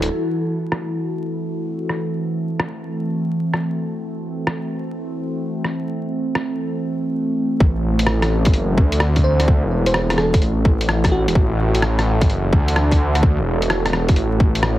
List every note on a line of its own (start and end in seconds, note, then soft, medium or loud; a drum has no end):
0.00 7.59 E3 medium
0.00 0.10 G3 medium
0.00 1.31 E4 medium
0.00 7.61 F#4 medium
0.00 7.61 A4 medium
0.00 closed hi-hat medium
0.27 14.79 A3 medium
0.48 14.79 C4 medium
0.72 cross-stick medium
1.89 cross-stick soft
2.60 cross-stick medium
3.54 cross-stick soft
4.47 cross-stick medium
5.65 cross-stick soft
6.35 cross-stick medium
7.60 8.55 A1 loud
7.60 14.79 E3 medium
7.60 kick loud
7.94 14.79 A4 medium
7.98 14.79 F#4 medium
7.98 closed hi-hat medium
8.06 cross-stick loud
8.22 cross-stick medium
8.22 closed hi-hat soft
8.45 kick loud
8.45 closed hi-hat medium
8.53 8.79 F#1 medium
8.53 closed hi-hat soft
8.77 9.65 D2 loud
8.77 kick loud
8.92 closed hi-hat medium
9.00 cross-stick loud
9.16 kick medium
9.16 closed hi-hat soft
9.24 9.49 C5 medium
9.40 cross-stick soft
9.40 closed hi-hat medium
9.48 kick loud
9.63 10.41 E1 loud
9.86 10.16 C5 medium
9.86 closed hi-hat medium
9.94 cross-stick loud
10.10 cross-stick medium
10.10 closed hi-hat soft
10.18 10.43 A4 medium
10.18 cross-stick medium
10.34 kick loud
10.34 closed hi-hat medium
10.41 11.27 A1 medium
10.41 closed hi-hat soft
10.65 kick loud
10.81 closed hi-hat medium
10.89 cross-stick loud
11.04 kick medium
11.04 cross-stick medium
11.04 closed hi-hat soft
11.12 11.79 F#4 medium
11.27 11.35 E1 medium
11.27 closed hi-hat medium
11.35 12.31 A1 loud
11.35 kick loud
11.75 closed hi-hat medium
11.82 cross-stick loud
11.99 cross-stick medium
11.99 closed hi-hat soft
12.21 kick loud
12.21 closed hi-hat medium
12.29 12.54 F#1 medium
12.29 closed hi-hat soft
12.53 13.40 D2 loud
12.53 kick loud
12.68 closed hi-hat medium
12.76 cross-stick loud
12.92 kick medium
12.92 closed hi-hat soft
13.15 cross-stick soft
13.15 closed hi-hat medium
13.23 kick loud
13.38 14.16 E1 loud
13.62 closed hi-hat medium
13.70 cross-stick loud
13.86 cross-stick medium
13.86 closed hi-hat soft
13.93 cross-stick medium
14.09 kick loud
14.09 closed hi-hat medium
14.16 14.79 A1 medium
14.16 closed hi-hat soft
14.40 kick loud
14.55 closed hi-hat medium
14.63 cross-stick loud